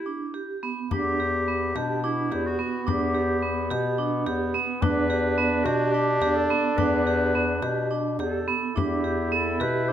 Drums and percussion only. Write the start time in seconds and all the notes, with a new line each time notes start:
0.91 frame drum
1.76 frame drum
2.32 frame drum
2.88 frame drum
3.71 frame drum
4.27 frame drum
4.82 frame drum
5.66 frame drum
6.22 frame drum
6.78 frame drum
7.07 frame drum
7.34 frame drum
7.63 frame drum
8.19 frame drum
8.77 frame drum
9.61 frame drum